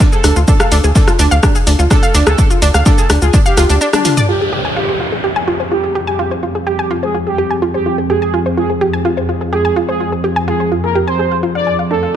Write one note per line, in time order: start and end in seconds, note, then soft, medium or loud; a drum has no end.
0.00 0.12 D4 loud
0.00 kick loud
0.00 snare loud
0.00 closed hi-hat medium
0.00 shaker medium
0.12 0.21 G#4 medium
0.12 0.34 A4 loud
0.12 shaker soft
0.24 0.33 D2 medium
0.24 0.36 D4 medium
0.24 cross-stick medium
0.24 closed hi-hat medium
0.24 open hi-hat loud
0.24 shaker medium
0.36 0.45 D2 medium
0.36 0.45 F4 medium
0.36 shaker soft
0.48 0.56 D4 loud
0.48 0.77 A4 loud
0.48 kick loud
0.48 closed hi-hat medium
0.48 shaker medium
0.60 0.71 F5 loud
0.60 cross-stick medium
0.60 shaker soft
0.71 0.80 D2 medium
0.71 0.83 D4 loud
0.71 closed hi-hat medium
0.71 open hi-hat medium
0.71 shaker medium
0.84 0.92 D2 medium
0.84 0.92 G#4 medium
0.84 shaker soft
0.95 1.07 D4 medium
0.95 1.10 A4 medium
0.95 kick loud
0.95 snare loud
0.95 closed hi-hat medium
0.95 shaker medium
1.07 1.16 F4 medium
1.07 cross-stick medium
1.07 closed hi-hat soft
1.07 shaker soft
1.19 1.28 D2 loud
1.19 1.28 D4 loud
1.19 closed hi-hat medium
1.19 open hi-hat medium
1.19 shaker medium
1.31 1.40 D2 medium
1.31 1.42 F5 loud
1.31 shaker soft
1.43 1.55 D4 loud
1.43 kick loud
1.43 cross-stick medium
1.43 closed hi-hat medium
1.43 shaker medium
1.55 1.64 G#4 medium
1.55 closed hi-hat soft
1.55 shaker soft
1.67 1.76 D2 medium
1.67 1.78 D4 medium
1.67 closed hi-hat medium
1.67 open hi-hat loud
1.67 shaker medium
1.79 1.87 D2 medium
1.79 1.87 F4 medium
1.79 shaker soft
1.90 1.99 D4 loud
1.90 2.13 A4 loud
1.90 kick loud
1.90 cross-stick medium
1.90 snare loud
1.90 closed hi-hat medium
1.90 shaker medium
2.03 2.14 F5 loud
2.03 shaker soft
2.14 2.23 D2 medium
2.14 2.26 D4 loud
2.14 snare loud
2.14 closed hi-hat medium
2.14 open hi-hat loud
2.14 shaker medium
2.26 2.35 D2 medium
2.26 2.35 G#4 medium
2.26 2.49 A4 loud
2.26 cross-stick medium
2.26 closed hi-hat soft
2.26 shaker soft
2.38 2.50 D4 medium
2.38 kick loud
2.38 closed hi-hat medium
2.38 shaker medium
2.50 2.59 F4 medium
2.50 shaker soft
2.62 2.71 D2 medium
2.62 2.71 D4 loud
2.62 closed hi-hat medium
2.62 open hi-hat loud
2.62 shaker medium
2.74 2.83 D2 medium
2.74 2.85 F5 loud
2.74 cross-stick medium
2.74 shaker soft
2.86 2.97 D4 loud
2.86 3.08 A4 medium
2.86 kick loud
2.86 snare loud
2.86 closed hi-hat medium
2.86 shaker medium
2.98 3.06 G#4 medium
2.98 shaker soft
3.10 3.19 D2 medium
3.10 3.21 D4 medium
3.10 cross-stick medium
3.10 closed hi-hat medium
3.10 open hi-hat loud
3.10 shaker medium
3.22 3.30 D2 medium
3.22 3.30 F4 medium
3.22 3.36 G#4 medium
3.22 shaker soft
3.33 3.42 D4 loud
3.33 kick loud
3.33 closed hi-hat medium
3.33 shaker medium
3.46 3.75 G4 loud
3.46 3.57 F5 loud
3.46 shaker soft
3.57 3.66 D2 medium
3.57 3.66 F4 loud
3.57 cross-stick medium
3.57 closed hi-hat medium
3.57 open hi-hat loud
3.57 shaker medium
3.69 3.78 D2 medium
3.69 3.78 D4 loud
3.69 closed hi-hat medium
3.69 shaker soft
3.81 3.90 D4 loud
3.81 shaker medium
3.93 4.15 D4 loud
3.93 4.04 D4 loud
3.93 cross-stick medium
3.93 closed hi-hat medium
3.93 high tom medium
3.93 shaker soft
4.05 4.14 F4 medium
4.05 closed hi-hat medium
4.05 open hi-hat loud
4.05 mid tom medium
4.05 shaker medium
4.17 4.25 D5 loud
4.17 mid tom medium
4.17 shaker soft
4.29 12.16 F2 medium
4.29 11.87 F3 medium
4.29 11.87 C4 medium
4.29 4.40 F4 medium
4.29 8.06 G4 medium
4.29 4.58 G4 medium
4.29 11.87 G#4 medium
4.29 downlifter medium
4.41 4.49 G#4 medium
4.53 4.61 G4 loud
4.65 4.76 G#5 medium
4.76 4.88 F4 loud
4.76 4.91 G4 medium
4.89 4.97 C5 medium
5.00 5.12 F4 medium
5.12 5.21 G#4 medium
5.24 5.33 G4 medium
5.36 5.47 G#5 loud
5.48 5.59 F4 loud
5.60 5.68 C5 medium
5.71 5.83 F4 medium
5.71 5.94 G4 loud
5.84 5.92 G#4 medium
5.95 6.04 G4 medium
6.07 6.30 G4 medium
6.07 6.19 G#5 loud
6.19 6.31 F4 medium
6.31 6.40 C5 medium
6.43 6.55 F4 medium
6.55 6.63 G#4 medium
6.67 6.75 G4 loud
6.67 6.89 G4 medium
6.79 6.90 G#5 loud
6.91 7.02 F4 loud
7.03 7.17 G#4 medium
7.03 7.11 C5 medium
7.15 7.26 F4 medium
7.27 7.56 G4 medium
7.27 7.35 G#4 medium
7.38 7.47 G4 loud
7.50 7.62 G#5 loud
7.62 7.74 F4 medium
7.74 7.96 G4 loud
7.74 7.83 C5 medium
7.86 7.98 F4 medium
7.98 8.06 G#4 medium
8.10 12.16 F4 medium
8.10 8.18 G4 loud
8.10 8.39 G#4 medium
8.22 8.33 G#5 loud
8.34 8.45 F4 loud
8.46 8.54 C5 medium
8.57 8.69 F4 medium
8.57 8.72 G#4 medium
8.70 8.78 G#4 medium
8.81 8.90 G4 loud
8.93 9.04 G#5 loud
9.05 9.17 F4 loud
9.17 9.25 C5 medium
9.29 9.40 F4 medium
9.41 9.49 G#4 medium
9.53 9.61 G4 loud
9.53 9.75 G#4 medium
9.65 9.76 G#5 loud
9.76 9.88 F4 medium
9.89 10.11 G#4 medium
9.89 9.97 C5 medium
10.00 10.12 F4 medium
10.12 10.21 G#4 medium
10.24 10.33 G4 loud
10.36 10.47 G#5 loud
10.48 10.59 F4 loud
10.48 10.70 G#4 medium
10.60 10.68 C5 medium
10.72 10.83 F4 medium
10.84 10.92 G#4 medium
10.84 10.98 A#4 medium
10.95 11.04 G4 loud
11.07 11.37 C5 medium
11.07 11.19 G#5 medium
11.19 11.31 G#4 medium
11.31 11.36 F5 medium
11.43 11.55 F4 medium
11.55 11.77 D5 medium
11.55 11.60 F5 medium
11.67 11.75 G#5 medium
11.79 11.84 F5 medium
11.90 12.16 D3 medium
11.90 12.16 D4 medium
11.90 12.02 D4 medium
11.90 12.16 A4 medium
11.90 12.16 A4 loud
12.03 12.11 F4 medium